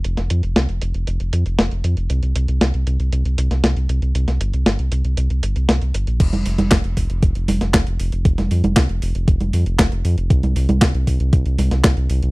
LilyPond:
<<
  \new Staff \with { instrumentName = "Analog synth bass" } { \clef bass \time 4/4 \key c \phrygian \tempo 4 = 117 f,,16 f,,16 f,16 f,,16 c,16 f,,16 f,,16 f,,16 f,,16 f,,16 f,16 f,,16 f,,16 f,,16 f,16 f,,16 | c,16 c,16 c,16 c,16 c,16 c,16 c,16 c,16 c,16 c,16 c,16 c,16 c,16 c,16 c,16 c,16 | c,16 c,16 g,,16 c,16 g,,16 c,16 c,16 c,16 c,16 c,16 g,,16 c,16 c,16 c,16 g,,16 bes,,16 | f,,16 f,,16 f,,16 f,,16 f,,16 f,,16 f,,16 f,,16 f,,16 f,,16 f,,16 f,,16 f,,16 f,,16 f,,16 f,,16 |
f,,16 f,,16 f,16 f,,16 c,16 f,,16 f,,16 f,,16 f,,16 f,,16 f,16 f,,16 f,,16 f,,16 f,16 f,,16 | c,16 c,16 c,16 c,16 c,16 c,16 c,16 c,16 c,16 c,16 c,16 c,16 c,16 c,16 c,16 c,16 | }
  \new DrumStaff \with { instrumentName = "Drums" } \drummode { \time 4/4 hh16 <hh sn>16 hh16 hh16 <hh sn>16 hh16 hh16 hh16 hh16 hh16 hh16 hh16 <hh sn>16 hh16 hh16 hh16 | hh16 hh16 hh16 hh16 <hh sn>16 hh16 hh16 hh16 hh16 hh16 hh16 <hh sn>16 <hh sn>16 hh16 hh16 hh16 | hh16 <hh sn>16 hh16 hh16 <hh sn>16 hh16 hh16 hh16 hh16 hh16 hh16 hh16 <hh sn>16 hh16 hh16 hh16 | <cymc hh bd>16 <cgho hh>16 hho16 <cgho hh>16 <hc hh bd sn>16 hh16 <hho bd>16 hh16 <hh bd>16 hh16 <cgho hho>16 <hh sn>16 <hc hh bd sn>16 hh16 hho16 hh16 |
<hh bd>16 <cgho hh sn>16 hho16 <cgho hh>16 <hc hh bd sn>16 hh16 hho16 hh16 <hh bd>16 <cgho hh>16 hho16 hh16 <hc hh bd sn>16 hh16 hho16 hh16 | <hh bd>16 <cgho hh>16 hho16 <cgho hh>16 <hc hh bd sn>16 hh16 <hho bd>16 hh16 <hh bd>16 hh16 <cgho hho>16 <hh sn>16 <hc hh bd sn>16 hh16 hho16 hh16 | }
>>